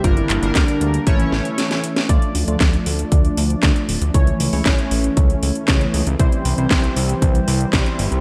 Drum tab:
HH |xxxxxxxxxx-xxxxx|xxoxxxoxxxoxxxox|xxooxxoxxxoxxxox|xxoxxxoxxxoxxxox|
CP |--x-x-----------|----x-------x---|----x-------x---|----x-------x---|
SD |----o-----o-oo-o|----o-------o---|----o-------o---|----o-------o---|
BD |o---o---o-------|o---o---o---o---|o---o---o---o---|o---o---o---o---|